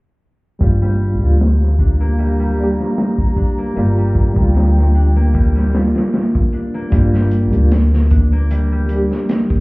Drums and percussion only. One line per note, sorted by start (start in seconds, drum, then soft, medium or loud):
0.61 kick loud
0.61 closed hi-hat medium
0.83 snare soft
1.01 closed hi-hat medium
1.22 closed hi-hat soft
1.40 snare loud
1.40 closed hi-hat medium
1.62 snare soft
1.79 kick medium
1.79 closed hi-hat medium
2.18 closed hi-hat medium
2.58 closed hi-hat medium
2.80 snare soft
2.98 snare loud
2.98 closed hi-hat medium
3.18 kick medium
3.36 kick medium
3.36 closed hi-hat medium
3.76 closed hi-hat medium
4.15 kick medium
4.15 closed hi-hat medium
4.36 kick medium
4.54 snare medium
4.54 closed hi-hat medium
4.77 snare soft
4.94 closed hi-hat medium
5.34 kick medium
5.34 closed hi-hat medium
5.57 snare soft
5.73 snare loud
5.73 closed hi-hat medium
5.95 snare medium
5.95 closed hi-hat medium
6.13 snare medium
6.13 closed hi-hat medium
6.35 kick medium
6.53 closed hi-hat medium
6.92 kick loud
6.92 closed hi-hat medium
7.14 snare soft
7.31 closed hi-hat medium
7.53 closed hi-hat soft
7.72 snare loud
7.72 closed hi-hat medium
7.94 snare soft
8.10 kick medium
8.10 closed hi-hat medium
8.51 closed hi-hat medium
8.89 closed hi-hat medium
9.11 snare soft
9.29 snare loud
9.29 closed hi-hat medium
9.50 kick medium